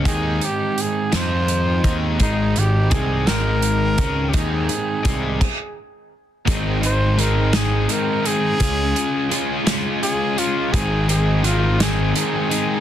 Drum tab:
CC |------|------|---x--|------|
HH |xxxxxx|xxxxxx|xxx---|xxxxxx|
SD |---o--|---o--|------|---o--|
BD |o----o|o-o--o|o-oo--|o-----|

CC |------|------|
HH |xxxxxx|xxxxxx|
SD |---o--|---o--|
BD |o-----|o-----|